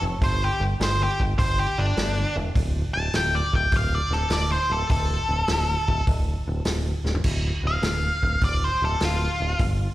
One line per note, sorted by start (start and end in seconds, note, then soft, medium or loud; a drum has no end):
0.01 0.15 F1 medium
0.21 0.48 G1 loud
0.21 0.42 C5 medium
0.21 kick loud
0.21 open hi-hat medium
0.44 0.62 G4 medium
0.60 0.73 G1 medium
0.80 1.07 G1 medium
0.80 1.00 C5 medium
0.80 snare loud
0.80 open hi-hat medium
1.03 1.20 G4 loud
1.20 1.33 G1 medium
1.20 kick medium
1.39 1.65 G1 medium
1.39 1.58 C5 loud
1.39 kick loud
1.39 open hi-hat medium
1.59 1.78 G4 medium
1.78 1.91 G1 medium
1.78 2.35 D4 medium
1.97 2.24 G1 medium
1.97 snare loud
1.97 open hi-hat medium
2.36 2.49 E1 medium
2.55 2.82 D1 medium
2.55 kick loud
2.55 open hi-hat medium
2.94 3.08 D1 medium
2.94 3.13 A5 loud
3.13 3.41 D1 medium
3.13 3.34 G5 medium
3.13 snare loud
3.13 open hi-hat medium
3.35 3.53 D5 medium
3.53 3.66 D1 medium
3.53 3.73 G5 medium
3.53 kick medium
3.72 3.99 D1 medium
3.72 kick loud
3.72 open hi-hat medium
3.77 3.95 F5 medium
3.95 4.12 D5 medium
4.11 4.24 D1 medium
4.11 4.32 A4 medium
4.11 snare soft
4.30 4.57 D1 medium
4.30 4.51 D5 medium
4.30 snare loud
4.30 open hi-hat medium
4.52 4.70 C5 loud
4.70 4.83 D1 medium
4.70 4.90 A4 medium
4.90 5.17 D1 loud
4.90 6.04 A4 loud
4.90 kick loud
4.90 open hi-hat medium
5.29 5.42 D1 medium
5.48 5.75 D1 medium
5.48 snare loud
5.48 open hi-hat medium
5.88 6.01 D1 medium
5.88 kick medium
6.07 6.34 D1 medium
6.07 kick loud
6.07 open hi-hat soft
6.47 6.60 D1 medium
6.65 6.92 D1 loud
6.65 snare loud
6.65 open hi-hat medium
7.04 7.18 D1 medium
7.04 snare medium
7.15 floor tom medium
7.24 7.51 D1 medium
7.24 kick loud
7.24 crash loud
7.63 7.77 D1 medium
7.63 8.41 F5 loud
7.82 8.09 D1 medium
7.82 snare loud
7.82 open hi-hat medium
8.23 8.36 D1 medium
8.23 kick medium
8.41 8.69 D1 medium
8.41 8.64 D5 medium
8.41 kick medium
8.41 open hi-hat medium
8.64 8.82 C5 medium
8.82 8.95 D1 medium
8.82 9.02 A4 medium
9.00 9.28 D1 medium
9.00 snare loud
9.00 open hi-hat medium
9.05 9.60 F4 medium
9.40 9.53 D1 medium
9.59 9.86 G1 medium
9.59 kick loud
9.59 open hi-hat medium